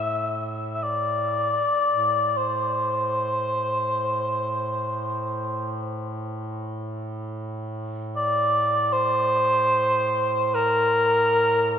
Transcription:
0.00 1.73 A2 soft
0.00 0.48 E5 medium
0.73 0.85 E5 soft
0.83 2.39 D5 medium
1.90 11.79 A2 soft
2.37 5.79 C5 medium
8.17 8.94 D5 medium
8.93 10.56 C5 medium
10.55 11.79 A#4 medium

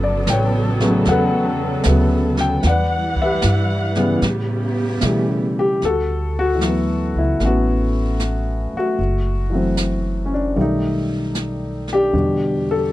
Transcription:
0.00 0.24 G1 medium
0.00 2.60 C#3 medium
0.00 2.60 F#3 medium
0.00 2.60 B3 medium
0.00 2.59 A4 medium
0.00 0.26 D5 medium
0.27 1.04 A1 medium
0.27 1.03 G5 medium
0.27 snare medium
0.27 hi-hat pedal medium
0.33 1.09 B4 soft
0.33 1.84 C#5 medium
0.80 1.03 C#3 medium
0.80 1.03 F#3 medium
0.80 1.03 A3 soft
0.80 1.04 B3 medium
0.80 snare soft
1.05 1.83 E2 medium
1.05 2.43 F#5 medium
1.05 brush sweep soft
1.05 snare soft
1.11 2.62 A4 medium
1.11 2.62 B4 medium
1.84 2.62 D2 medium
1.84 2.64 C#3 medium
1.84 2.65 F#3 soft
1.84 2.64 A3 soft
1.84 2.65 B3 medium
1.84 snare medium
1.84 hi-hat pedal soft
2.37 2.63 G5 medium
2.37 snare soft
2.63 3.40 E2 medium
2.63 4.20 E3 medium
2.63 4.20 G3 medium
2.63 4.20 F#5 medium
2.63 brush sweep soft
2.63 snare soft
2.67 3.21 B4 medium
2.67 4.20 D5 medium
2.67 3.20 F#5 medium
3.16 kick soft
3.22 4.75 G4 soft
3.22 4.75 B4 medium
3.22 4.74 E5 medium
3.42 4.20 G2 medium
3.42 snare medium
3.42 hi-hat pedal medium
3.95 4.19 C#3 soft
3.95 4.20 E3 soft
3.95 4.19 G3 medium
3.95 4.20 B3 medium
3.95 snare soft
4.20 5.00 A2 medium
4.20 5.80 C#3 medium
4.20 5.80 B3 medium
4.20 5.79 G4 medium
4.20 brush sweep soft
4.20 snare soft
5.01 5.80 B2 medium
5.01 5.82 C#3 soft
5.01 5.82 E3 soft
5.01 5.82 G3 soft
5.01 5.82 A3 soft
5.01 snare soft
5.01 hi-hat pedal soft
5.59 5.84 G4 medium
5.82 7.11 D2 medium
5.82 6.33 A4 medium
5.82 brush sweep soft
5.82 snare soft
5.87 6.37 F#4 medium
6.39 7.19 F#4 medium
6.55 8.95 E3 soft
6.55 8.97 F#3 soft
6.61 7.38 A3 soft
6.61 snare soft
6.61 hi-hat pedal soft
6.66 7.40 B3 soft
7.15 7.39 C#2 soft
7.15 7.41 E4 medium
7.40 8.69 A1 medium
7.40 8.76 A3 soft
7.40 7.45 B3 soft
7.40 8.99 C#4 soft
7.40 brush sweep soft
7.40 snare soft
7.45 8.97 B3 soft
7.45 8.76 F#4 medium
8.20 snare soft
8.20 hi-hat pedal soft
8.74 9.52 A3 soft
8.74 9.75 F#4 medium
8.74 muted upright bass stroke soft
8.98 10.52 F#1 medium
8.98 brush sweep soft
9.50 10.55 E3 soft
9.50 10.56 F#3 soft
9.50 10.55 A3 soft
9.55 10.58 C4 soft
9.77 snare soft
9.77 hi-hat pedal medium
10.26 10.33 C#4 soft
10.34 10.59 D4 medium
10.55 12.09 B1 medium
10.55 12.13 D#3 soft
10.55 12.12 G3 soft
10.55 10.60 A3 soft
10.55 12.14 D5 soft
10.55 brush sweep soft
10.61 12.12 A3 soft
10.61 11.94 D#4 medium
11.35 snare soft
11.35 hi-hat pedal soft
11.87 snare soft
11.93 12.13 D4 medium
11.93 12.65 G4 medium
12.13 12.92 E2 medium
12.13 12.92 B2 soft
12.13 12.92 D3 soft
12.13 12.92 G3 soft
12.13 12.92 D4 medium
12.13 brush sweep soft
12.71 12.92 A4 medium

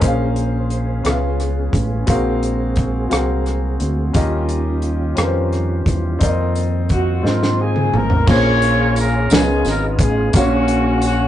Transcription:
0.00 1.01 A#1 medium
0.00 1.00 A#2 medium
0.00 1.04 C#3 medium
0.00 1.01 A#3 medium
0.00 0.84 C#4 medium
0.00 0.84 G#4 medium
0.00 1.04 G#4 medium
0.00 0.84 A#4 medium
0.00 1.02 C5 soft
0.00 0.85 C5 medium
0.00 0.08 D#5 medium
0.00 0.16 A#5 soft
0.00 kick medium
0.00 closed hi-hat medium
0.07 0.88 F5 medium
0.36 closed hi-hat soft
0.70 closed hi-hat soft
1.03 1.70 C#2 medium
1.03 2.04 C#3 medium
1.03 4.11 G#3 medium
1.03 2.07 B3 medium
1.03 1.88 C#4 medium
1.03 2.07 C#4 medium
1.03 1.88 F4 medium
1.03 1.88 G#4 medium
1.03 4.12 G#4 medium
1.03 1.89 B4 medium
1.03 1.12 E5 medium
1.03 cross-stick medium
1.03 closed hi-hat medium
1.12 1.92 F5 medium
1.40 cross-stick soft
1.40 closed hi-hat soft
1.73 2.05 A1 medium
1.73 kick medium
1.73 closed hi-hat soft
2.07 3.07 A#1 medium
2.07 3.07 A#2 medium
2.07 4.12 A#3 soft
2.07 2.91 C4 medium
2.07 4.12 C4 medium
2.07 2.91 F#4 medium
2.07 2.91 G#4 medium
2.07 2.92 A#4 medium
2.07 2.92 F5 medium
2.07 kick medium
2.07 closed hi-hat medium
2.43 closed hi-hat soft
2.76 kick medium
2.76 closed hi-hat soft
3.09 3.76 C2 medium
3.09 3.94 C4 medium
3.09 3.94 F#4 medium
3.09 3.95 G#4 medium
3.09 3.95 A#4 medium
3.09 3.95 F5 medium
3.09 cross-stick medium
3.09 closed hi-hat medium
3.46 cross-stick soft
3.46 closed hi-hat soft
3.80 4.12 D2 medium
3.80 closed hi-hat soft
4.13 5.14 D#2 medium
4.13 8.23 D#3 medium
4.13 5.14 D#3 medium
4.13 6.19 G3 soft
4.13 4.98 C#4 medium
4.13 6.19 C#4 medium
4.13 6.19 F4 medium
4.13 4.98 F4 medium
4.13 4.98 G4 medium
4.13 4.99 A#4 medium
4.13 4.99 D#5 medium
4.13 kick medium
4.13 closed hi-hat medium
4.49 closed hi-hat soft
4.82 closed hi-hat soft
5.15 5.83 F2 medium
5.15 6.00 C#4 medium
5.15 6.01 F4 medium
5.15 6.01 G4 medium
5.15 6.01 A#4 medium
5.15 5.25 B4 medium
5.15 cross-stick medium
5.15 closed hi-hat medium
5.25 6.05 C5 medium
5.53 cross-stick soft
5.53 closed hi-hat soft
5.86 6.18 E2 medium
5.86 kick medium
5.86 closed hi-hat medium
6.19 7.20 F2 medium
6.19 8.26 F3 medium
6.19 8.26 A#3 soft
6.19 7.04 C4 medium
6.19 8.26 C4 soft
6.19 7.04 D#4 medium
6.19 7.05 F4 medium
6.19 7.05 A#4 medium
6.19 6.28 D5 medium
6.19 kick loud
6.19 closed hi-hat medium
6.27 7.08 D#5 medium
6.55 closed hi-hat soft
6.89 7.24 F#4 medium
6.89 kick medium
6.89 closed hi-hat soft
7.22 7.89 G#2 medium
7.22 8.07 C4 medium
7.22 8.07 D#4 medium
7.22 8.08 F4 soft
7.22 7.31 A4 soft
7.22 8.08 D#5 medium
7.22 snare soft
7.27 7.60 F4 medium
7.27 8.11 A#4 medium
7.43 snare soft
7.62 7.95 G#4 medium
7.76 mid tom medium
7.93 8.25 A1 medium
7.93 8.29 A#4 medium
7.93 mid tom medium
8.10 floor tom medium
8.26 9.27 A#1 loud
8.26 9.27 A#2 medium
8.26 9.11 A#3 medium
8.26 9.11 C#4 medium
8.26 9.11 F4 medium
8.26 9.28 F4 medium
8.26 9.30 G#4 medium
8.26 9.12 G#4 medium
8.26 9.28 G#4 medium
8.26 8.35 C5 medium
8.26 9.30 C#5 medium
8.26 10.32 F5 medium
8.26 9.30 A#5 medium
8.26 kick loud
8.26 crash medium
8.26 tambourine medium
8.31 8.94 C#5 loud
8.35 9.15 C#5 medium
8.62 closed hi-hat medium
8.96 9.32 A#4 medium
8.96 closed hi-hat medium
8.96 tambourine medium
9.30 9.63 C#2 medium
9.30 10.31 C#3 medium
9.30 10.15 B3 medium
9.30 10.31 B3 medium
9.30 10.15 D#4 medium
9.30 9.38 E4 soft
9.30 10.31 F4 medium
9.30 11.28 G#4 medium
9.30 10.15 A#4 medium
9.30 10.16 C#5 medium
9.30 10.33 D#5 medium
9.30 snare loud
9.30 closed hi-hat medium
9.30 tambourine medium
9.34 9.67 G#4 medium
9.38 10.18 F4 medium
9.65 9.97 G#1 medium
9.65 snare soft
9.65 closed hi-hat soft
9.65 tambourine soft
9.69 9.84 A#4 medium
9.99 10.31 A1 medium
9.99 10.33 G#4 loud
9.99 kick medium
9.99 closed hi-hat medium
10.33 11.28 A#1 loud
10.33 11.28 A#2 medium
10.33 11.18 A#3 medium
10.33 11.28 C#4 medium
10.33 11.18 C#4 medium
10.33 11.04 F#4 loud
10.33 11.19 F#4 medium
10.33 11.28 C#5 medium
10.33 11.19 C#5 medium
10.33 11.19 F5 medium
10.33 11.28 F5 medium
10.33 11.28 C#6 medium
10.33 kick loud
10.33 closed hi-hat medium
10.33 tambourine medium
10.68 closed hi-hat medium
11.02 closed hi-hat medium
11.02 tambourine medium
11.06 11.28 F#4 medium

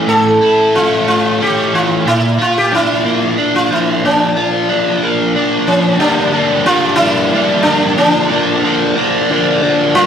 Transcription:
0.00 1.39 E3 medium
0.00 0.73 A3 medium
0.00 0.74 C#4 medium
0.07 1.72 A2 medium
0.07 0.76 A4 loud
0.41 2.06 E4 medium
0.75 1.39 C#4 medium
0.75 1.07 F4 medium
1.07 2.06 A3 medium
1.07 1.41 F4 medium
1.41 2.06 C#4 medium
1.41 1.72 G4 medium
1.73 2.06 E3 medium
1.73 2.07 F4 medium
2.06 3.70 A#2 medium
2.06 2.40 E4 medium
2.38 4.03 F4 medium
2.38 2.57 F4 medium
2.58 2.73 G4 medium
2.71 3.37 D4 medium
2.71 3.55 E4 medium
3.04 4.69 A#3 medium
3.38 4.68 D4 medium
3.56 3.72 F4 medium
3.71 5.35 F3 medium
3.71 4.05 E4 medium
4.04 5.68 A#2 medium
4.04 5.32 D4 medium
4.37 6.01 F4 medium
4.69 5.34 D4 medium
5.03 6.00 A#3 medium
5.35 6.00 D4 medium
5.67 5.99 F3 medium
5.67 6.00 C#4 medium
5.99 6.66 G2 medium
5.99 6.65 D3 medium
5.99 6.34 G3 loud
5.99 6.34 A#3 loud
5.99 6.62 D4 medium
5.99 6.33 D4 loud
6.33 6.66 G3 medium
6.33 6.68 A#3 medium
6.33 6.69 D4 medium
6.66 7.32 D3 medium
6.66 7.00 G3 medium
6.66 7.00 A#3 medium
6.66 6.98 D4 medium
6.66 6.95 F4 medium
6.96 7.34 D4 medium
6.96 7.62 E4 loud
7.00 7.33 G3 medium
7.00 7.34 A#3 medium
7.33 7.96 D3 medium
7.33 7.66 G3 medium
7.33 7.66 A#3 medium
7.33 7.65 D4 medium
7.63 7.99 A#3 medium
7.63 7.97 D4 medium
7.63 7.99 D4 medium
7.68 7.97 G3 medium
7.98 8.64 A#2 medium
7.98 8.63 D3 medium
7.98 8.32 F3 loud
7.98 8.32 A#3 loud
7.98 8.68 D4 medium
7.98 8.30 D4 loud
8.31 8.63 F3 medium
8.31 8.65 A#3 medium
8.31 8.65 D4 medium
8.64 9.29 D3 medium
8.64 8.98 F3 medium
8.64 8.98 A#3 medium
8.64 8.96 D4 medium
8.97 9.30 F3 medium
8.97 9.32 A#3 medium
8.97 9.32 D4 medium
9.31 9.94 D3 medium
9.31 9.64 F3 medium
9.31 9.64 A#3 medium
9.31 9.62 D4 medium
9.62 9.95 F3 medium
9.62 9.97 A#3 medium
9.62 9.97 D4 medium
9.95 10.06 G2 medium
9.95 10.06 D3 medium
9.95 10.06 G3 medium
9.95 10.06 A#3 medium
9.95 10.06 D4 loud
9.95 10.06 F4 loud

